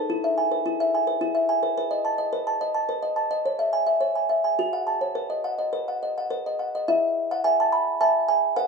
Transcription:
0.00 0.10 B4 medium
0.10 0.64 E4 medium
0.24 0.47 E5 medium
0.38 0.60 G#5 medium
0.52 0.74 B4 medium
0.66 1.20 E4 medium
0.80 1.02 E5 medium
0.95 1.16 G#5 medium
1.07 1.30 B4 medium
1.21 1.75 E4 medium
1.35 1.57 E5 medium
1.49 1.71 G#5 medium
1.63 1.76 B4 medium
1.78 2.31 B4 medium
1.91 2.13 D#5 medium
2.05 2.27 A5 medium
2.18 2.40 D#5 medium
2.33 2.88 B4 medium
2.47 2.69 A5 medium
2.61 2.83 D#5 medium
2.74 2.97 A5 medium
2.89 3.43 B4 medium
3.03 3.25 D#5 medium
3.16 3.39 A5 medium
3.31 3.45 D#5 medium
3.46 3.99 C#5 medium
3.59 3.81 E5 medium
3.73 3.95 G#5 medium
3.87 4.09 E5 medium
4.01 4.56 C#5 medium
4.16 4.38 G#5 soft
4.29 4.52 E5 medium
4.44 4.58 G#5 medium
4.59 5.14 F#4 medium
4.73 4.96 F#5 soft
4.87 5.10 A5 medium
5.01 5.15 C#5 medium
5.15 5.72 B4 medium
5.30 5.53 D#5 medium
5.44 5.67 F#5 medium
5.59 5.82 D#5 medium
5.73 6.29 B4 medium
5.88 6.11 F#5 soft
6.03 6.25 D#5 soft
6.18 6.40 F#5 medium
6.30 6.87 B4 medium
6.46 6.69 D#5 soft
6.59 6.83 F#5 soft
6.75 6.89 D#5 soft
6.88 7.43 E4 medium
6.88 7.29 E5 medium
7.31 7.45 F#5 medium
7.44 7.97 E5 medium
7.44 7.58 G#5 loud
7.60 7.73 A5 medium
7.72 7.99 B5 medium
8.01 8.52 E5 medium
8.01 8.27 G#5 medium
8.01 8.27 A5 loud
8.28 8.55 G#5 loud
8.56 8.67 B4 medium
8.56 8.67 F#5 loud

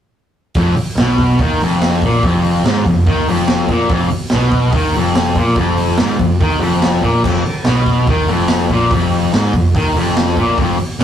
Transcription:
0.54 0.75 F1 loud
0.54 0.76 F2 loud
0.54 kick loud
0.54 open hi-hat medium
0.76 muted picked electric bass stroke soft
0.76 muted distorted electric guitar stroke medium
0.76 open hi-hat medium
0.95 1.35 B1 medium
0.95 1.39 B2 medium
0.95 snare loud
0.95 open hi-hat medium
1.18 kick medium
1.18 snare soft
1.18 open hi-hat medium
1.39 1.57 D#2 medium
1.39 1.61 D#3 loud
1.39 kick loud
1.39 open hi-hat medium
1.58 1.98 F1 loud
1.58 open hi-hat medium
1.63 2.03 F2 loud
1.81 snare loud
1.81 open hi-hat medium
2.02 2.22 A#1 loud
2.02 2.24 A#2 loud
2.02 kick medium
2.02 open hi-hat medium
2.23 2.62 F1 loud
2.23 2.65 F2 loud
2.23 kick loud
2.23 open hi-hat medium
2.44 open hi-hat medium
2.63 2.83 G#1 medium
2.63 2.85 G#2 loud
2.63 snare loud
2.63 open hi-hat medium
2.86 3.05 F1 medium
2.86 3.03 F2 medium
2.86 kick medium
2.86 open hi-hat medium
3.06 3.26 D#2 medium
3.06 3.27 D#3 loud
3.06 kick loud
3.06 open hi-hat medium
3.28 3.66 F1 loud
3.28 3.69 F2 loud
3.28 open hi-hat medium
3.47 snare loud
3.47 open hi-hat medium
3.68 3.88 A#1 loud
3.68 3.90 A#2 loud
3.68 kick medium
3.68 open hi-hat medium
3.89 4.09 F1 loud
3.89 4.10 F2 loud
3.89 kick loud
3.89 open hi-hat medium
4.10 muted distorted electric guitar stroke medium
4.10 muted picked electric bass stroke soft
4.10 open hi-hat medium
4.29 4.71 B1 loud
4.29 4.73 B2 loud
4.29 snare loud
4.29 open hi-hat medium
4.51 kick medium
4.51 open hi-hat medium
4.72 4.92 D#2 loud
4.72 4.94 D#3 loud
4.72 kick loud
4.72 open hi-hat medium
4.94 5.33 F1 loud
4.94 5.37 F2 loud
4.94 open hi-hat medium
5.15 snare loud
5.15 open hi-hat medium
5.35 5.55 A#1 loud
5.35 5.56 A#2 loud
5.35 kick medium
5.35 open hi-hat medium
5.55 5.95 F1 loud
5.55 5.97 F2 loud
5.55 kick loud
5.55 open hi-hat medium
5.77 open hi-hat medium
5.97 6.17 G#1 loud
5.97 6.19 G#2 loud
5.97 snare loud
5.97 open hi-hat medium
6.19 6.39 F1 medium
6.19 6.36 F2 medium
6.19 kick medium
6.19 open hi-hat medium
6.41 6.59 D#2 medium
6.41 6.61 D#3 loud
6.41 kick loud
6.41 open hi-hat medium
6.59 6.99 F1 medium
6.59 7.02 F2 loud
6.59 open hi-hat medium
6.82 snare loud
6.82 open hi-hat medium
7.02 7.22 A#1 loud
7.02 7.23 A#2 loud
7.02 kick medium
7.02 open hi-hat medium
7.23 7.44 F1 loud
7.23 7.44 F2 loud
7.23 kick loud
7.23 crash medium
7.44 muted picked electric bass stroke soft
7.44 muted distorted electric guitar stroke medium
7.44 open hi-hat medium
7.64 8.03 B1 medium
7.64 8.06 B2 loud
7.64 snare loud
7.64 open hi-hat medium
7.86 kick medium
7.86 snare soft
7.86 open hi-hat medium
8.07 8.27 D#2 medium
8.07 8.28 D#3 loud
8.07 kick loud
8.07 open hi-hat medium
8.28 8.67 F1 medium
8.28 8.70 F2 loud
8.28 open hi-hat medium
8.48 snare loud
8.48 open hi-hat medium
8.69 8.90 A#1 loud
8.69 8.91 A#2 loud
8.69 kick medium
8.69 open hi-hat medium
8.91 9.30 F1 loud
8.91 9.33 F2 loud
8.91 kick loud
8.91 open hi-hat medium
9.12 open hi-hat medium
9.32 9.52 G#1 medium
9.32 9.53 G#2 loud
9.32 snare loud
9.32 open hi-hat medium
9.53 9.73 F1 medium
9.53 9.71 F2 medium
9.53 kick medium
9.53 open hi-hat medium
9.74 9.93 D#2 medium
9.74 9.95 D#3 loud
9.74 kick loud
9.74 open hi-hat medium
9.94 10.33 F1 loud
9.94 10.37 F2 loud
9.94 open hi-hat medium
10.16 snare loud
10.16 open hi-hat medium
10.37 10.57 A#1 loud
10.37 10.58 A#2 loud
10.37 kick medium
10.37 open hi-hat medium
10.58 10.78 F1 loud
10.58 10.78 F2 loud
10.58 kick loud
10.58 open hi-hat medium
10.78 muted picked electric bass stroke soft
10.78 muted distorted electric guitar stroke medium
10.78 open hi-hat medium
11.00 11.04 B1 medium
11.00 11.04 B2 loud
11.00 snare loud
11.00 open hi-hat medium

